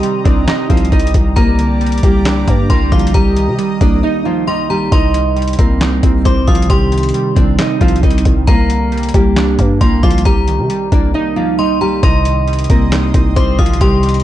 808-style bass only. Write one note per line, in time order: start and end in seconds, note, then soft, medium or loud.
0.25 0.47 C2 loud
0.70 0.91 C2 loud
0.92 1.13 C2 loud
1.14 1.36 C2 loud
1.37 2.00 C2 loud
2.03 2.46 C2 loud
2.48 2.69 G2 loud
2.70 2.91 C2 loud
2.92 3.13 C2 loud
3.14 3.49 C2 loud
3.48 3.58 C3 loud
3.81 4.03 C2 loud
4.92 5.56 C2 loud
5.59 6.01 C2 loud
6.03 6.24 C2 loud
6.25 6.47 C2 loud
6.48 6.69 C2 loud
6.70 7.12 C2 loud
7.37 7.58 C2 loud
7.81 8.02 C2 loud
8.03 8.24 C2 loud
8.25 8.47 C2 loud
8.48 9.12 C2 loud
9.14 9.57 C2 loud
9.59 9.80 G2 loud
9.81 10.02 C2 loud
10.03 10.25 C2 loud
10.25 10.60 C2 loud
10.59 10.69 C3 loud
10.92 11.14 C2 loud
12.03 12.67 C2 loud
12.70 13.12 C2 loud
13.14 13.36 C2 loud
13.36 13.58 C2 loud
13.59 13.80 C2 loud
13.81 14.23 C2 loud